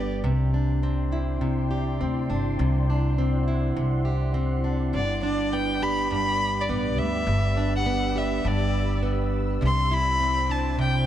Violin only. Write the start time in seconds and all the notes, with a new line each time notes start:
Already playing: D5
4.95 D5
5.24 D5
5.53 G5
5.82 B5
6.13 B5
6.60 D5
6.99 E5
7.76 F#5
8.18 E5
8.47 D5
9.66 C6
9.94 B5
10.51 A5
10.81 G5